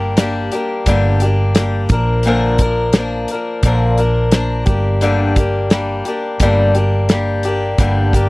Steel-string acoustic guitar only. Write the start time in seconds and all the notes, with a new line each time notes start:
Already playing: G3 A#3 D4 G4
0.18 G3 A#3 D4 G4
0.52 G3 A#3 D4 G4
0.87 G2 D3 G3 A#3 D4 G4
1.22 G3 A#3 D4 G4
1.57 G3 A#3 D4 G4
1.92 F3 A#3 D4 A#4
2.26 A#2 D3 F3 A#3 D4 A#4
2.61 F3 A#3 D4 A#4
2.97 F3 A#3 D4 A#4
3.31 F3 A#3 D4 A#4
3.65 A#2 D3 F3 A#3 D4 A#4
3.98 F3 A#3 D4 A#4
4.32 F3 A#3 D4 A#4
4.66 G3 A#3 D4 G4
5.01 G2 D3 G3 A#3 D4 G4
5.36 G3 A#3 D4 G4
5.71 G3 A#3 D4 G4
6.06 G3 A#3 D4 G4
6.41 G2 D3 G3 A#3 D4 G4
6.75 G3 A#3 D4 G4
7.10 G3 A#3 D4 G4
7.45 G3 A#3 D4 G4
7.79 G2 D3 G3 A#3 D4 G4
8.14 G3 A#3 D4 G4